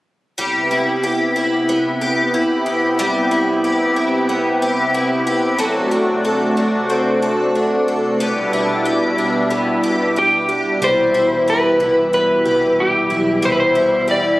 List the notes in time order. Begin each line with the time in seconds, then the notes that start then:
0.37 C3 G3 B3 E4 G4
0.71 E4
1.03 G4
1.36 E4
1.69 B3
2.01 G4
2.34 E4
2.66 G4
2.99 G3 G4
3.31 E4
3.64 G4
3.96 E4
4.29 B3
4.62 G4
4.94 E4
5.27 G4
5.58 F#3 A3 D4 F#4 A4
5.91 D4
6.25 A4
6.57 D4
6.90 C4
7.22 A4
7.55 D4
7.88 A4
8.19 B2 G3 B3 E4 G4
8.53 D4
8.85 G4
9.18 D4
9.50 B3
9.84 G4
10.16 D4 G4
10.49 G4
10.80 C2 B2 E3 G3 E4 C5
11.14 E4
11.48 G4 B4
11.80 C2 E4
12.13 B3 B4
12.45 C2 G4
12.80 G4
13.10 B1 E4
13.42 C2 G3 C5
13.52 B4
13.60 C5
13.75 E4
14.08 G4 D5